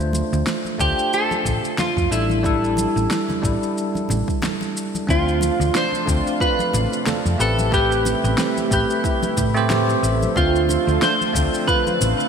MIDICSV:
0, 0, Header, 1, 7, 480
1, 0, Start_track
1, 0, Tempo, 659341
1, 1784, Time_signature, 4, 2, 24, 8
1, 8943, End_track
2, 0, Start_track
2, 0, Title_t, "Clean electric guitar"
2, 0, Program_c, 0, 27
2, 586, Note_on_c, 0, 67, 99
2, 826, Note_off_c, 0, 67, 0
2, 829, Note_on_c, 0, 69, 107
2, 1306, Note_on_c, 0, 65, 94
2, 1321, Note_off_c, 0, 69, 0
2, 1540, Note_off_c, 0, 65, 0
2, 1543, Note_on_c, 0, 64, 83
2, 3194, Note_off_c, 0, 64, 0
2, 3715, Note_on_c, 0, 65, 101
2, 4197, Note_on_c, 0, 72, 104
2, 4204, Note_off_c, 0, 65, 0
2, 4664, Note_off_c, 0, 72, 0
2, 4667, Note_on_c, 0, 71, 92
2, 5117, Note_off_c, 0, 71, 0
2, 5395, Note_on_c, 0, 69, 98
2, 5613, Note_off_c, 0, 69, 0
2, 5633, Note_on_c, 0, 67, 114
2, 6347, Note_off_c, 0, 67, 0
2, 6356, Note_on_c, 0, 67, 87
2, 7041, Note_off_c, 0, 67, 0
2, 7549, Note_on_c, 0, 65, 103
2, 8027, Note_on_c, 0, 72, 105
2, 8041, Note_off_c, 0, 65, 0
2, 8496, Note_off_c, 0, 72, 0
2, 8499, Note_on_c, 0, 71, 104
2, 8943, Note_off_c, 0, 71, 0
2, 8943, End_track
3, 0, Start_track
3, 0, Title_t, "Steel pan"
3, 0, Program_c, 1, 114
3, 3707, Note_on_c, 1, 60, 76
3, 3925, Note_off_c, 1, 60, 0
3, 4188, Note_on_c, 1, 62, 67
3, 4405, Note_off_c, 1, 62, 0
3, 4668, Note_on_c, 1, 65, 80
3, 4885, Note_off_c, 1, 65, 0
3, 5145, Note_on_c, 1, 69, 77
3, 5374, Note_off_c, 1, 69, 0
3, 5625, Note_on_c, 1, 71, 82
3, 5844, Note_off_c, 1, 71, 0
3, 6106, Note_on_c, 1, 60, 69
3, 6324, Note_off_c, 1, 60, 0
3, 6589, Note_on_c, 1, 64, 83
3, 6806, Note_off_c, 1, 64, 0
3, 7069, Note_on_c, 1, 67, 79
3, 7296, Note_off_c, 1, 67, 0
3, 7549, Note_on_c, 1, 60, 85
3, 7766, Note_off_c, 1, 60, 0
3, 8028, Note_on_c, 1, 62, 70
3, 8245, Note_off_c, 1, 62, 0
3, 8504, Note_on_c, 1, 65, 86
3, 8723, Note_off_c, 1, 65, 0
3, 8943, End_track
4, 0, Start_track
4, 0, Title_t, "Tine electric piano"
4, 0, Program_c, 2, 4
4, 0, Note_on_c, 2, 57, 80
4, 0, Note_on_c, 2, 62, 70
4, 0, Note_on_c, 2, 65, 68
4, 0, Note_on_c, 2, 72, 82
4, 6, Control_c, 2, 64, 127
4, 553, Note_off_c, 2, 57, 0
4, 556, Note_off_c, 2, 62, 0
4, 561, Note_off_c, 2, 65, 0
4, 565, Note_off_c, 2, 72, 0
4, 570, Note_on_c, 2, 57, 76
4, 579, Note_on_c, 2, 62, 69
4, 587, Note_on_c, 2, 65, 68
4, 596, Note_on_c, 2, 72, 78
4, 1512, Note_off_c, 2, 57, 0
4, 1517, Note_off_c, 2, 62, 0
4, 1521, Note_off_c, 2, 65, 0
4, 1525, Note_off_c, 2, 72, 0
4, 1535, Note_on_c, 2, 55, 76
4, 1540, Note_on_c, 2, 62, 74
4, 1544, Note_on_c, 2, 64, 73
4, 1544, Note_on_c, 2, 69, 86
4, 1554, Control_c, 2, 64, 0
4, 1688, Control_c, 2, 64, 127
4, 1754, Note_off_c, 2, 55, 0
4, 1757, Note_off_c, 2, 62, 0
4, 1759, Note_off_c, 2, 64, 0
4, 1759, Note_off_c, 2, 69, 0
4, 1767, Note_on_c, 2, 55, 85
4, 1774, Note_on_c, 2, 62, 77
4, 1783, Note_on_c, 2, 64, 74
4, 1790, Note_on_c, 2, 69, 94
4, 2471, Note_off_c, 2, 55, 0
4, 2474, Note_off_c, 2, 62, 0
4, 2478, Note_off_c, 2, 64, 0
4, 2482, Note_off_c, 2, 69, 0
4, 2487, Note_on_c, 2, 55, 81
4, 2495, Note_on_c, 2, 62, 73
4, 2504, Note_on_c, 2, 64, 73
4, 2511, Note_on_c, 2, 69, 86
4, 3671, Note_off_c, 2, 55, 0
4, 3675, Note_off_c, 2, 62, 0
4, 3679, Note_off_c, 2, 64, 0
4, 3683, Note_off_c, 2, 69, 0
4, 3693, Note_on_c, 2, 57, 77
4, 3700, Note_on_c, 2, 62, 70
4, 3707, Note_on_c, 2, 65, 66
4, 3713, Control_c, 2, 64, 0
4, 3715, Note_on_c, 2, 72, 81
4, 3828, Control_c, 2, 64, 127
4, 4393, Note_off_c, 2, 57, 0
4, 4397, Note_off_c, 2, 62, 0
4, 4400, Note_off_c, 2, 65, 0
4, 4404, Note_off_c, 2, 72, 0
4, 4411, Note_on_c, 2, 57, 73
4, 4418, Note_on_c, 2, 62, 68
4, 4424, Note_on_c, 2, 65, 70
4, 4434, Note_on_c, 2, 60, 83
4, 5353, Note_off_c, 2, 57, 0
4, 5356, Note_off_c, 2, 62, 0
4, 5359, Note_off_c, 2, 65, 0
4, 5364, Note_off_c, 2, 60, 0
4, 5375, Note_on_c, 2, 57, 78
4, 5381, Note_on_c, 2, 60, 75
4, 5384, Note_on_c, 2, 67, 74
4, 5390, Note_on_c, 2, 71, 91
4, 5395, Control_c, 2, 64, 0
4, 5499, Control_c, 2, 64, 127
4, 5595, Note_off_c, 2, 57, 0
4, 5597, Note_off_c, 2, 60, 0
4, 5599, Note_off_c, 2, 67, 0
4, 5602, Note_off_c, 2, 71, 0
4, 5612, Note_on_c, 2, 57, 82
4, 5626, Note_on_c, 2, 67, 83
4, 5636, Note_on_c, 2, 71, 102
4, 6313, Note_off_c, 2, 57, 0
4, 6320, Note_off_c, 2, 67, 0
4, 6325, Note_off_c, 2, 71, 0
4, 6336, Note_on_c, 2, 57, 77
4, 6350, Note_on_c, 2, 67, 77
4, 6358, Note_on_c, 2, 71, 92
4, 6928, Note_off_c, 2, 57, 0
4, 6935, Note_off_c, 2, 67, 0
4, 6939, Note_off_c, 2, 71, 0
4, 6947, Note_on_c, 2, 57, 104
4, 6953, Note_on_c, 2, 60, 88
4, 6963, Note_on_c, 2, 67, 89
4, 6970, Note_on_c, 2, 72, 106
4, 7513, Note_off_c, 2, 57, 0
4, 7516, Note_off_c, 2, 60, 0
4, 7521, Note_off_c, 2, 67, 0
4, 7525, Note_off_c, 2, 72, 0
4, 7537, Note_on_c, 2, 57, 77
4, 7545, Note_on_c, 2, 62, 72
4, 7550, Note_on_c, 2, 65, 72
4, 7556, Control_c, 2, 64, 0
4, 7558, Note_on_c, 2, 72, 86
4, 7668, Control_c, 2, 64, 127
4, 8235, Note_off_c, 2, 57, 0
4, 8239, Note_off_c, 2, 62, 0
4, 8242, Note_off_c, 2, 65, 0
4, 8246, Note_off_c, 2, 72, 0
4, 8252, Note_on_c, 2, 57, 80
4, 8261, Note_on_c, 2, 62, 70
4, 8269, Note_on_c, 2, 65, 75
4, 8275, Note_on_c, 2, 60, 89
4, 8943, Note_off_c, 2, 57, 0
4, 8943, Note_off_c, 2, 60, 0
4, 8943, Note_off_c, 2, 62, 0
4, 8943, Note_off_c, 2, 65, 0
4, 8943, End_track
5, 0, Start_track
5, 0, Title_t, "Analog synth pad"
5, 0, Program_c, 3, 89
5, 3700, Note_on_c, 3, 65, 89
5, 3701, Note_on_c, 3, 62, 71
5, 3702, Note_on_c, 3, 48, 77
5, 3702, Note_on_c, 3, 53, 77
5, 3702, Note_on_c, 3, 57, 77
5, 5366, Note_off_c, 3, 62, 0
5, 5366, Note_off_c, 3, 65, 0
5, 5367, Note_off_c, 3, 53, 0
5, 5378, Note_on_c, 3, 55, 77
5, 5379, Note_on_c, 3, 64, 89
5, 7514, Note_off_c, 3, 48, 0
5, 7520, Note_off_c, 3, 55, 0
5, 7520, Note_off_c, 3, 64, 0
5, 7536, Note_on_c, 3, 53, 78
5, 7537, Note_on_c, 3, 60, 79
5, 7537, Note_on_c, 3, 65, 84
5, 7539, Note_on_c, 3, 50, 86
5, 8943, Note_off_c, 3, 50, 0
5, 8943, Note_off_c, 3, 53, 0
5, 8943, Note_off_c, 3, 57, 0
5, 8943, Note_off_c, 3, 60, 0
5, 8943, Note_off_c, 3, 65, 0
5, 8943, End_track
6, 0, Start_track
6, 0, Title_t, "Fingered electric bass"
6, 0, Program_c, 4, 33
6, 0, Note_on_c, 4, 38, 96
6, 153, Note_off_c, 4, 38, 0
6, 238, Note_on_c, 4, 38, 97
6, 303, Note_off_c, 4, 38, 0
6, 579, Note_on_c, 4, 38, 86
6, 664, Note_off_c, 4, 38, 0
6, 1057, Note_on_c, 4, 33, 94
6, 1143, Note_off_c, 4, 33, 0
6, 1432, Note_on_c, 4, 41, 82
6, 1500, Note_off_c, 4, 41, 0
6, 1539, Note_on_c, 4, 33, 91
6, 2073, Note_off_c, 4, 33, 0
6, 2155, Note_on_c, 4, 33, 89
6, 2222, Note_off_c, 4, 33, 0
6, 2500, Note_on_c, 4, 33, 82
6, 2585, Note_off_c, 4, 33, 0
6, 2983, Note_on_c, 4, 33, 94
6, 3066, Note_off_c, 4, 33, 0
6, 3703, Note_on_c, 4, 38, 95
6, 3995, Note_off_c, 4, 38, 0
6, 4075, Note_on_c, 4, 38, 96
6, 4141, Note_off_c, 4, 38, 0
6, 4423, Note_on_c, 4, 38, 86
6, 4506, Note_off_c, 4, 38, 0
6, 4905, Note_on_c, 4, 33, 99
6, 4987, Note_off_c, 4, 33, 0
6, 5282, Note_on_c, 4, 41, 83
6, 5345, Note_off_c, 4, 41, 0
6, 5385, Note_on_c, 4, 33, 98
6, 5916, Note_off_c, 4, 33, 0
6, 6000, Note_on_c, 4, 33, 102
6, 6064, Note_off_c, 4, 33, 0
6, 6342, Note_on_c, 4, 33, 86
6, 6426, Note_off_c, 4, 33, 0
6, 6822, Note_on_c, 4, 45, 85
6, 7238, Note_off_c, 4, 45, 0
6, 7302, Note_on_c, 4, 33, 95
6, 7461, Note_off_c, 4, 33, 0
6, 7541, Note_on_c, 4, 38, 102
6, 7834, Note_off_c, 4, 38, 0
6, 7916, Note_on_c, 4, 38, 105
6, 7982, Note_off_c, 4, 38, 0
6, 8261, Note_on_c, 4, 38, 86
6, 8345, Note_off_c, 4, 38, 0
6, 8743, Note_on_c, 4, 33, 95
6, 8826, Note_off_c, 4, 33, 0
6, 8943, End_track
7, 0, Start_track
7, 0, Title_t, "Drums"
7, 2, Note_on_c, 9, 82, 19
7, 75, Note_off_c, 9, 82, 0
7, 95, Note_on_c, 9, 62, 58
7, 95, Note_on_c, 9, 63, 72
7, 108, Note_on_c, 9, 82, 62
7, 168, Note_off_c, 9, 62, 0
7, 168, Note_off_c, 9, 63, 0
7, 180, Note_off_c, 9, 82, 0
7, 241, Note_on_c, 9, 82, 28
7, 314, Note_off_c, 9, 82, 0
7, 340, Note_on_c, 9, 38, 95
7, 346, Note_on_c, 9, 82, 44
7, 413, Note_off_c, 9, 38, 0
7, 419, Note_off_c, 9, 82, 0
7, 473, Note_on_c, 9, 63, 54
7, 482, Note_on_c, 9, 82, 20
7, 546, Note_off_c, 9, 63, 0
7, 554, Note_off_c, 9, 82, 0
7, 579, Note_on_c, 9, 36, 95
7, 584, Note_on_c, 9, 82, 66
7, 652, Note_off_c, 9, 36, 0
7, 657, Note_off_c, 9, 82, 0
7, 720, Note_on_c, 9, 82, 30
7, 793, Note_off_c, 9, 82, 0
7, 824, Note_on_c, 9, 82, 42
7, 897, Note_off_c, 9, 82, 0
7, 955, Note_on_c, 9, 63, 81
7, 960, Note_on_c, 9, 82, 21
7, 1028, Note_off_c, 9, 63, 0
7, 1033, Note_off_c, 9, 82, 0
7, 1058, Note_on_c, 9, 36, 57
7, 1063, Note_on_c, 9, 64, 78
7, 1064, Note_on_c, 9, 82, 73
7, 1131, Note_off_c, 9, 36, 0
7, 1136, Note_off_c, 9, 64, 0
7, 1137, Note_off_c, 9, 82, 0
7, 1199, Note_on_c, 9, 82, 31
7, 1272, Note_off_c, 9, 82, 0
7, 1296, Note_on_c, 9, 63, 59
7, 1299, Note_on_c, 9, 38, 98
7, 1301, Note_on_c, 9, 64, 67
7, 1305, Note_on_c, 9, 82, 43
7, 1369, Note_off_c, 9, 63, 0
7, 1371, Note_off_c, 9, 38, 0
7, 1373, Note_off_c, 9, 64, 0
7, 1378, Note_off_c, 9, 82, 0
7, 1433, Note_on_c, 9, 36, 93
7, 1442, Note_on_c, 9, 82, 20
7, 1505, Note_off_c, 9, 36, 0
7, 1514, Note_off_c, 9, 82, 0
7, 1546, Note_on_c, 9, 82, 70
7, 1618, Note_off_c, 9, 82, 0
7, 1672, Note_on_c, 9, 63, 89
7, 1682, Note_on_c, 9, 82, 28
7, 1745, Note_off_c, 9, 63, 0
7, 1755, Note_off_c, 9, 82, 0
7, 1779, Note_on_c, 9, 36, 114
7, 1787, Note_on_c, 9, 82, 43
7, 1852, Note_off_c, 9, 36, 0
7, 1859, Note_off_c, 9, 82, 0
7, 1924, Note_on_c, 9, 82, 20
7, 1997, Note_off_c, 9, 82, 0
7, 2015, Note_on_c, 9, 62, 65
7, 2019, Note_on_c, 9, 63, 73
7, 2026, Note_on_c, 9, 82, 72
7, 2088, Note_off_c, 9, 62, 0
7, 2092, Note_off_c, 9, 63, 0
7, 2099, Note_off_c, 9, 82, 0
7, 2163, Note_on_c, 9, 82, 31
7, 2236, Note_off_c, 9, 82, 0
7, 2262, Note_on_c, 9, 38, 99
7, 2269, Note_on_c, 9, 82, 44
7, 2335, Note_off_c, 9, 38, 0
7, 2341, Note_off_c, 9, 82, 0
7, 2394, Note_on_c, 9, 63, 60
7, 2401, Note_on_c, 9, 64, 81
7, 2404, Note_on_c, 9, 82, 21
7, 2466, Note_off_c, 9, 63, 0
7, 2473, Note_off_c, 9, 64, 0
7, 2476, Note_off_c, 9, 82, 0
7, 2500, Note_on_c, 9, 36, 92
7, 2509, Note_on_c, 9, 82, 73
7, 2572, Note_off_c, 9, 36, 0
7, 2582, Note_off_c, 9, 82, 0
7, 2643, Note_on_c, 9, 82, 29
7, 2716, Note_off_c, 9, 82, 0
7, 2749, Note_on_c, 9, 82, 38
7, 2822, Note_off_c, 9, 82, 0
7, 2877, Note_on_c, 9, 63, 86
7, 2887, Note_on_c, 9, 82, 21
7, 2950, Note_off_c, 9, 63, 0
7, 2959, Note_off_c, 9, 82, 0
7, 2976, Note_on_c, 9, 62, 65
7, 2988, Note_on_c, 9, 64, 80
7, 2991, Note_on_c, 9, 82, 75
7, 3048, Note_off_c, 9, 62, 0
7, 3061, Note_off_c, 9, 64, 0
7, 3064, Note_off_c, 9, 82, 0
7, 3115, Note_on_c, 9, 36, 93
7, 3128, Note_on_c, 9, 82, 31
7, 3188, Note_off_c, 9, 36, 0
7, 3201, Note_off_c, 9, 82, 0
7, 3217, Note_on_c, 9, 62, 65
7, 3217, Note_on_c, 9, 64, 76
7, 3222, Note_on_c, 9, 63, 64
7, 3228, Note_on_c, 9, 38, 105
7, 3234, Note_on_c, 9, 82, 44
7, 3290, Note_off_c, 9, 62, 0
7, 3290, Note_off_c, 9, 64, 0
7, 3294, Note_off_c, 9, 63, 0
7, 3301, Note_off_c, 9, 38, 0
7, 3307, Note_off_c, 9, 82, 0
7, 3355, Note_on_c, 9, 62, 65
7, 3365, Note_on_c, 9, 82, 19
7, 3428, Note_off_c, 9, 62, 0
7, 3438, Note_off_c, 9, 82, 0
7, 3473, Note_on_c, 9, 82, 68
7, 3546, Note_off_c, 9, 82, 0
7, 3603, Note_on_c, 9, 63, 81
7, 3607, Note_on_c, 9, 82, 32
7, 3675, Note_off_c, 9, 63, 0
7, 3679, Note_off_c, 9, 82, 0
7, 3702, Note_on_c, 9, 36, 117
7, 3713, Note_on_c, 9, 82, 46
7, 3775, Note_off_c, 9, 36, 0
7, 3786, Note_off_c, 9, 82, 0
7, 3847, Note_on_c, 9, 82, 29
7, 3920, Note_off_c, 9, 82, 0
7, 3937, Note_on_c, 9, 62, 62
7, 3944, Note_on_c, 9, 63, 83
7, 3950, Note_on_c, 9, 82, 74
7, 4010, Note_off_c, 9, 62, 0
7, 4017, Note_off_c, 9, 63, 0
7, 4023, Note_off_c, 9, 82, 0
7, 4087, Note_on_c, 9, 82, 33
7, 4159, Note_off_c, 9, 82, 0
7, 4186, Note_on_c, 9, 38, 109
7, 4192, Note_on_c, 9, 82, 46
7, 4259, Note_off_c, 9, 38, 0
7, 4265, Note_off_c, 9, 82, 0
7, 4314, Note_on_c, 9, 63, 60
7, 4329, Note_on_c, 9, 82, 31
7, 4387, Note_off_c, 9, 63, 0
7, 4402, Note_off_c, 9, 82, 0
7, 4422, Note_on_c, 9, 36, 103
7, 4431, Note_on_c, 9, 82, 81
7, 4495, Note_off_c, 9, 36, 0
7, 4503, Note_off_c, 9, 82, 0
7, 4565, Note_on_c, 9, 82, 31
7, 4638, Note_off_c, 9, 82, 0
7, 4662, Note_on_c, 9, 36, 117
7, 4671, Note_on_c, 9, 82, 42
7, 4734, Note_off_c, 9, 36, 0
7, 4744, Note_off_c, 9, 82, 0
7, 4798, Note_on_c, 9, 63, 86
7, 4805, Note_on_c, 9, 82, 31
7, 4871, Note_off_c, 9, 63, 0
7, 4877, Note_off_c, 9, 82, 0
7, 4902, Note_on_c, 9, 64, 84
7, 4911, Note_on_c, 9, 82, 80
7, 4975, Note_off_c, 9, 64, 0
7, 4983, Note_off_c, 9, 82, 0
7, 5045, Note_on_c, 9, 82, 34
7, 5118, Note_off_c, 9, 82, 0
7, 5143, Note_on_c, 9, 38, 103
7, 5147, Note_on_c, 9, 63, 61
7, 5149, Note_on_c, 9, 82, 47
7, 5151, Note_on_c, 9, 64, 75
7, 5216, Note_off_c, 9, 38, 0
7, 5220, Note_off_c, 9, 63, 0
7, 5222, Note_off_c, 9, 82, 0
7, 5224, Note_off_c, 9, 64, 0
7, 5286, Note_on_c, 9, 82, 31
7, 5359, Note_off_c, 9, 82, 0
7, 5391, Note_on_c, 9, 82, 80
7, 5464, Note_off_c, 9, 82, 0
7, 5522, Note_on_c, 9, 63, 85
7, 5527, Note_on_c, 9, 82, 34
7, 5594, Note_off_c, 9, 63, 0
7, 5599, Note_off_c, 9, 82, 0
7, 5621, Note_on_c, 9, 36, 121
7, 5632, Note_on_c, 9, 82, 47
7, 5694, Note_off_c, 9, 36, 0
7, 5705, Note_off_c, 9, 82, 0
7, 5765, Note_on_c, 9, 82, 32
7, 5838, Note_off_c, 9, 82, 0
7, 5861, Note_on_c, 9, 62, 70
7, 5863, Note_on_c, 9, 63, 88
7, 5870, Note_on_c, 9, 82, 76
7, 5934, Note_off_c, 9, 62, 0
7, 5936, Note_off_c, 9, 63, 0
7, 5942, Note_off_c, 9, 82, 0
7, 6003, Note_on_c, 9, 82, 35
7, 6076, Note_off_c, 9, 82, 0
7, 6100, Note_on_c, 9, 38, 109
7, 6107, Note_on_c, 9, 82, 51
7, 6173, Note_off_c, 9, 38, 0
7, 6180, Note_off_c, 9, 82, 0
7, 6241, Note_on_c, 9, 82, 34
7, 6245, Note_on_c, 9, 63, 65
7, 6314, Note_off_c, 9, 82, 0
7, 6318, Note_off_c, 9, 63, 0
7, 6341, Note_on_c, 9, 36, 97
7, 6347, Note_on_c, 9, 82, 81
7, 6414, Note_off_c, 9, 36, 0
7, 6420, Note_off_c, 9, 82, 0
7, 6481, Note_on_c, 9, 82, 35
7, 6554, Note_off_c, 9, 82, 0
7, 6581, Note_on_c, 9, 36, 116
7, 6587, Note_on_c, 9, 82, 43
7, 6654, Note_off_c, 9, 36, 0
7, 6660, Note_off_c, 9, 82, 0
7, 6717, Note_on_c, 9, 63, 95
7, 6720, Note_on_c, 9, 82, 36
7, 6789, Note_off_c, 9, 63, 0
7, 6792, Note_off_c, 9, 82, 0
7, 6821, Note_on_c, 9, 36, 62
7, 6823, Note_on_c, 9, 62, 67
7, 6823, Note_on_c, 9, 64, 84
7, 6825, Note_on_c, 9, 82, 84
7, 6894, Note_off_c, 9, 36, 0
7, 6896, Note_off_c, 9, 62, 0
7, 6896, Note_off_c, 9, 64, 0
7, 6898, Note_off_c, 9, 82, 0
7, 6963, Note_on_c, 9, 82, 33
7, 7036, Note_off_c, 9, 82, 0
7, 7061, Note_on_c, 9, 38, 114
7, 7064, Note_on_c, 9, 63, 68
7, 7066, Note_on_c, 9, 64, 69
7, 7067, Note_on_c, 9, 82, 46
7, 7068, Note_on_c, 9, 62, 59
7, 7134, Note_off_c, 9, 38, 0
7, 7137, Note_off_c, 9, 63, 0
7, 7139, Note_off_c, 9, 64, 0
7, 7140, Note_off_c, 9, 82, 0
7, 7141, Note_off_c, 9, 62, 0
7, 7200, Note_on_c, 9, 62, 67
7, 7205, Note_on_c, 9, 82, 30
7, 7273, Note_off_c, 9, 62, 0
7, 7277, Note_off_c, 9, 82, 0
7, 7309, Note_on_c, 9, 82, 76
7, 7381, Note_off_c, 9, 82, 0
7, 7444, Note_on_c, 9, 63, 99
7, 7444, Note_on_c, 9, 82, 33
7, 7516, Note_off_c, 9, 63, 0
7, 7517, Note_off_c, 9, 82, 0
7, 7541, Note_on_c, 9, 36, 123
7, 7550, Note_on_c, 9, 82, 44
7, 7614, Note_off_c, 9, 36, 0
7, 7623, Note_off_c, 9, 82, 0
7, 7685, Note_on_c, 9, 82, 29
7, 7758, Note_off_c, 9, 82, 0
7, 7782, Note_on_c, 9, 62, 68
7, 7784, Note_on_c, 9, 63, 105
7, 7792, Note_on_c, 9, 82, 79
7, 7855, Note_off_c, 9, 62, 0
7, 7857, Note_off_c, 9, 63, 0
7, 7864, Note_off_c, 9, 82, 0
7, 7924, Note_on_c, 9, 82, 35
7, 7997, Note_off_c, 9, 82, 0
7, 8023, Note_on_c, 9, 38, 109
7, 8030, Note_on_c, 9, 82, 45
7, 8096, Note_off_c, 9, 38, 0
7, 8103, Note_off_c, 9, 82, 0
7, 8163, Note_on_c, 9, 63, 65
7, 8164, Note_on_c, 9, 82, 33
7, 8236, Note_off_c, 9, 63, 0
7, 8237, Note_off_c, 9, 82, 0
7, 8261, Note_on_c, 9, 36, 101
7, 8269, Note_on_c, 9, 82, 86
7, 8334, Note_off_c, 9, 36, 0
7, 8342, Note_off_c, 9, 82, 0
7, 8404, Note_on_c, 9, 82, 35
7, 8476, Note_off_c, 9, 82, 0
7, 8500, Note_on_c, 9, 36, 124
7, 8506, Note_on_c, 9, 82, 47
7, 8573, Note_off_c, 9, 36, 0
7, 8578, Note_off_c, 9, 82, 0
7, 8640, Note_on_c, 9, 63, 85
7, 8642, Note_on_c, 9, 82, 34
7, 8713, Note_off_c, 9, 63, 0
7, 8715, Note_off_c, 9, 82, 0
7, 8746, Note_on_c, 9, 64, 86
7, 8746, Note_on_c, 9, 82, 87
7, 8819, Note_off_c, 9, 64, 0
7, 8819, Note_off_c, 9, 82, 0
7, 8882, Note_on_c, 9, 82, 34
7, 8943, Note_off_c, 9, 82, 0
7, 8943, End_track
0, 0, End_of_file